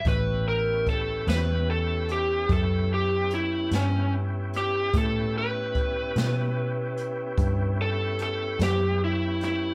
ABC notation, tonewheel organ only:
X:1
M:12/8
L:1/8
Q:3/8=49
K:A
V:1 name="Tonewheel organ"
[B,CE=G]12 | [B,CE=G]12 |]